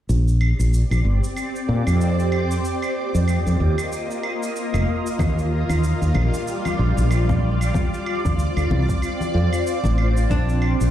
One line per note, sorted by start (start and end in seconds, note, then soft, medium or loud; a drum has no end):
0.09 0.52 A#1 medium
0.09 2.62 C4 medium
0.09 2.62 G4 medium
0.09 2.62 D5 medium
0.09 shaker soft
0.28 shaker soft
0.41 claves medium
0.59 0.82 A#1 medium
0.59 shaker medium
0.74 shaker soft
0.91 1.01 A#1 medium
0.91 claves medium
0.91 shaker soft
1.05 1.18 G1 medium
1.24 shaker medium
1.37 claves medium
1.37 shaker soft
1.56 shaker soft
1.69 1.82 A#2 medium
1.87 2.59 F2 medium
1.87 claves medium
1.87 shaker medium
2.01 shaker soft
2.20 shaker soft
2.32 claves medium
2.51 shaker medium
2.64 5.17 A#3 medium
2.64 10.26 F4 medium
2.64 5.17 D#5 medium
2.64 shaker medium
2.82 claves medium
2.82 shaker soft
3.14 3.37 F2 medium
3.14 shaker medium
3.28 claves medium
3.28 shaker soft
3.46 3.57 F2 medium
3.46 shaker soft
3.60 3.74 D#2 medium
3.78 claves medium
3.78 shaker medium
3.92 shaker medium
4.11 shaker soft
4.23 claves medium
4.43 shaker medium
4.56 shaker soft
4.74 4.84 F1 medium
4.74 claves medium
4.74 shaker soft
5.07 shaker medium
5.19 5.62 D#2 medium
5.19 7.72 G3 medium
5.19 10.26 D5 medium
5.19 kick loud
5.19 high conga medium
5.19 claves medium
5.19 shaker medium
5.39 shaker soft
5.69 5.92 D#2 medium
5.69 high conga medium
5.69 claves medium
5.69 shaker medium
5.84 shaker medium
6.02 6.12 D#2 medium
6.02 shaker soft
6.14 6.29 A#1 medium
6.14 high conga medium
6.14 claves medium
6.34 shaker medium
6.48 shaker medium
6.65 high conga medium
6.65 claves medium
6.65 shaker soft
6.79 6.93 A#1 medium
6.97 7.69 A#1 medium
6.97 shaker medium
7.11 claves medium
7.11 shaker medium
7.29 kick loud
7.29 high conga medium
7.29 shaker soft
7.61 claves medium
7.61 shaker medium
7.74 10.28 C4 medium
7.74 kick loud
7.74 high conga medium
7.74 shaker medium
7.94 shaker soft
8.06 claves medium
8.25 8.48 D2 medium
8.25 kick medium
8.25 high conga medium
8.25 shaker medium
8.39 shaker medium
8.57 8.67 D2 medium
8.57 claves medium
8.57 shaker soft
8.70 8.84 C2 medium
8.70 high conga medium
8.89 kick medium
8.89 shaker medium
9.02 claves medium
9.02 shaker soft
9.21 high conga medium
9.21 shaker soft
9.34 9.48 F2 medium
9.53 claves medium
9.53 shaker medium
9.67 shaker medium
9.84 10.25 A1 medium
9.84 high conga medium
9.84 shaker soft
9.98 claves medium
10.17 shaker medium
10.30 10.73 A#1 medium
10.30 10.91 D4 medium
10.30 10.91 G4 medium
10.30 10.91 D5 medium
10.30 10.91 C6 medium
10.30 kick loud
10.30 shaker medium
10.49 shaker soft
10.62 claves medium
10.81 10.91 A#1 medium
10.81 shaker medium